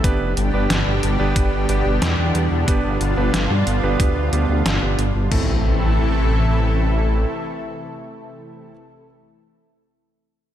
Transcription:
0.04 0.18 G1 loud
0.04 5.28 B2 medium
0.04 5.28 D3 medium
0.04 5.28 G3 medium
0.04 0.32 B3 medium
0.04 0.32 D4 medium
0.04 5.28 D4 medium
0.04 2.65 G4 medium
0.04 0.32 G4 medium
0.04 0.32 B4 loud
0.04 kick loud
0.04 closed hi-hat medium
0.21 0.34 F1 medium
0.37 0.51 G1 medium
0.37 closed hi-hat medium
0.54 0.67 G1 medium
0.54 1.16 B3 medium
0.54 1.16 D4 medium
0.54 1.16 G4 medium
0.54 1.16 B4 medium
0.70 0.84 G1 loud
0.70 snare loud
0.70 closed hi-hat medium
0.87 1.00 G1 medium
1.03 1.17 G1 medium
1.03 closed hi-hat medium
1.20 1.33 G1 medium
1.20 1.65 B3 medium
1.20 1.65 D4 medium
1.20 1.65 G4 medium
1.20 1.65 B4 loud
1.36 1.50 G1 loud
1.36 kick loud
1.36 closed hi-hat medium
1.52 1.66 G1 medium
1.69 1.83 G1 medium
1.69 1.97 B3 medium
1.69 1.97 D4 medium
1.69 1.97 G4 medium
1.69 1.97 B4 medium
1.69 closed hi-hat medium
1.86 1.99 G1 medium
2.02 2.16 E2 loud
2.02 snare loud
2.02 closed hi-hat medium
2.18 2.32 E2 medium
2.18 2.36 B3 medium
2.18 2.36 D4 medium
2.18 2.36 G4 medium
2.18 2.36 B4 medium
2.35 2.48 E2 medium
2.35 closed hi-hat medium
2.51 2.65 E2 medium
2.68 2.81 G1 loud
2.68 2.96 B3 medium
2.68 2.96 D4 medium
2.68 5.29 F4 medium
2.68 2.96 G4 medium
2.68 2.96 B4 medium
2.68 kick loud
2.68 closed hi-hat medium
2.84 2.98 G1 medium
3.01 3.14 G1 medium
3.01 closed hi-hat medium
3.17 3.31 G1 medium
3.17 3.79 B3 medium
3.17 3.79 D4 medium
3.17 3.79 G4 medium
3.17 3.79 B4 medium
3.34 3.47 G1 loud
3.34 snare loud
3.34 closed hi-hat medium
3.50 3.64 G2 medium
3.67 3.80 G1 medium
3.67 closed hi-hat medium
3.83 3.97 G1 medium
3.83 4.29 B3 medium
3.83 4.29 D4 medium
3.83 4.29 G4 medium
3.83 4.29 B4 loud
4.00 4.13 D2 loud
4.00 kick loud
4.00 closed hi-hat medium
4.16 4.30 D2 medium
4.33 4.46 D2 medium
4.33 4.60 B3 medium
4.33 4.60 D4 medium
4.33 4.60 G4 medium
4.33 4.60 B4 medium
4.33 closed hi-hat medium
4.49 4.63 D2 medium
4.66 4.79 G1 loud
4.66 snare loud
4.66 closed hi-hat medium
4.82 4.96 G1 medium
4.82 4.99 B3 medium
4.82 4.99 D4 medium
4.82 4.99 G4 medium
4.82 4.99 B4 medium
4.99 5.12 G1 medium
4.99 closed hi-hat medium
5.15 5.29 G1 medium
5.32 7.25 A1 medium
5.32 8.71 C3 medium
5.32 8.71 E3 medium
5.32 8.71 A3 medium
5.32 8.71 C4 medium
5.32 8.71 E4 medium
5.32 8.71 A4 medium
5.32 kick loud
5.32 crash medium
5.32 impact medium

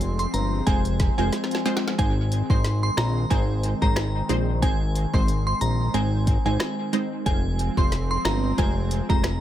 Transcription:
0.00 0.27 F1 medium
0.00 1.95 F3 medium
0.00 7.22 G#3 medium
0.00 7.22 C4 medium
0.00 closed hi-hat medium
0.19 0.29 C6 medium
0.19 closed hi-hat medium
0.34 0.62 G1 medium
0.34 0.46 A#5 medium
0.34 closed hi-hat medium
0.67 1.11 F1 loud
0.67 1.14 G#3 loud
0.67 1.14 C4 medium
0.67 1.14 F4 medium
0.67 1.14 C5 loud
0.67 0.78 G#5 medium
0.67 kick medium
0.67 closed hi-hat medium
0.85 closed hi-hat medium
1.00 kick medium
1.00 snare medium
1.00 closed hi-hat medium
1.18 1.31 F1 medium
1.18 1.62 G#3 medium
1.18 1.62 C4 medium
1.18 1.62 F4 medium
1.18 1.62 C5 medium
1.18 1.27 G#5 medium
1.33 snare medium
1.33 closed hi-hat medium
1.44 snare medium
1.51 snare medium
1.51 closed hi-hat medium
1.65 1.96 G#3 medium
1.65 1.96 C4 medium
1.65 1.96 F4 medium
1.65 1.96 C5 medium
1.65 snare medium
1.65 closed hi-hat medium
1.77 snare loud
1.88 snare medium
1.98 2.42 G#1 loud
1.98 7.22 D#3 medium
1.98 2.18 G#3 medium
1.98 2.18 C4 medium
1.98 2.18 D#4 medium
1.98 2.18 C5 loud
1.98 2.11 G#5 loud
1.98 kick loud
1.98 closed hi-hat medium
2.32 closed hi-hat medium
2.50 2.90 G#1 medium
2.50 2.65 G#3 medium
2.50 2.65 C4 medium
2.50 2.66 D#4 medium
2.50 2.66 C5 medium
2.50 2.59 C6 medium
2.50 kick loud
2.64 snare medium
2.64 closed hi-hat medium
2.83 2.92 C6 medium
2.97 3.26 A#1 loud
2.97 3.09 A#5 medium
2.97 cross-stick loud
2.97 snare loud
2.97 closed hi-hat medium
3.30 3.74 G#1 loud
3.30 3.77 G#3 loud
3.30 3.77 C4 medium
3.30 3.78 D#4 medium
3.30 3.78 C5 loud
3.30 3.42 G#5 medium
3.30 kick medium
3.30 closed hi-hat medium
3.63 closed hi-hat medium
3.82 4.22 G#1 medium
3.82 4.26 G#3 medium
3.82 4.26 C4 medium
3.82 4.26 D#4 medium
3.82 4.26 C5 medium
3.82 3.91 A#5 medium
3.82 kick loud
3.96 cross-stick medium
3.96 cross-stick loud
3.96 snare loud
3.96 closed hi-hat medium
4.29 4.64 A#1 medium
4.29 4.60 G#3 medium
4.29 4.60 C4 medium
4.29 4.60 D#4 medium
4.29 4.60 C5 medium
4.29 closed hi-hat medium
4.62 5.06 G#1 loud
4.62 4.81 G#3 loud
4.62 4.82 C4 medium
4.62 4.82 D#4 medium
4.62 4.82 C5 loud
4.62 4.74 G#5 loud
4.62 kick loud
4.62 closed hi-hat medium
4.95 closed hi-hat medium
5.14 5.54 G#1 medium
5.14 5.29 G#3 medium
5.14 5.29 C4 medium
5.14 5.29 D#4 medium
5.14 5.29 C5 medium
5.14 5.23 C6 medium
5.14 kick loud
5.28 closed hi-hat medium
5.47 5.56 C6 medium
5.61 5.89 A#1 loud
5.61 5.73 A#5 medium
5.61 closed hi-hat medium
5.94 6.38 G#1 loud
5.94 6.41 G#3 loud
5.94 6.41 C4 medium
5.94 6.41 D#4 medium
5.94 6.41 C5 loud
5.94 6.06 G#5 medium
5.94 closed hi-hat medium
6.27 kick medium
6.27 closed hi-hat medium
6.45 6.58 G#1 loud
6.45 6.90 G#3 medium
6.45 6.90 C4 medium
6.45 6.90 D#4 medium
6.45 6.90 C5 medium
6.45 6.55 G#5 medium
6.60 cross-stick medium
6.60 cross-stick loud
6.60 snare loud
6.60 closed hi-hat medium
6.93 7.24 G#3 medium
6.93 7.24 C4 medium
6.93 7.24 D#4 medium
6.93 7.24 C5 medium
6.93 closed hi-hat medium
7.26 7.70 F1 loud
7.26 9.41 F3 medium
7.26 9.41 G#3 medium
7.26 7.45 G#3 medium
7.26 9.41 C4 medium
7.26 7.45 C4 medium
7.26 7.45 F4 medium
7.26 7.45 C5 loud
7.26 7.38 G#5 loud
7.26 kick loud
7.26 closed hi-hat medium
7.59 closed hi-hat medium
7.77 8.18 F1 medium
7.77 7.93 G#3 medium
7.77 7.93 C4 medium
7.77 7.93 F4 medium
7.77 7.93 C5 medium
7.77 7.87 C6 medium
7.77 kick loud
7.92 snare medium
7.92 closed hi-hat medium
8.11 8.20 C6 medium
8.25 8.53 G1 medium
8.25 8.37 A#5 medium
8.25 cross-stick medium
8.25 snare loud
8.25 closed hi-hat medium
8.58 9.02 F1 loud
8.58 9.05 G#3 loud
8.58 9.05 C4 medium
8.58 9.05 F4 medium
8.58 9.05 C5 loud
8.58 8.70 G#5 medium
8.58 kick medium
8.58 closed hi-hat medium
8.91 closed hi-hat medium
9.09 9.41 F1 medium
9.09 9.25 G#3 medium
9.09 9.25 C4 medium
9.09 9.25 F4 medium
9.09 9.25 C5 medium
9.09 9.19 A#5 medium
9.09 kick loud
9.24 cross-stick medium
9.24 snare loud
9.24 closed hi-hat medium

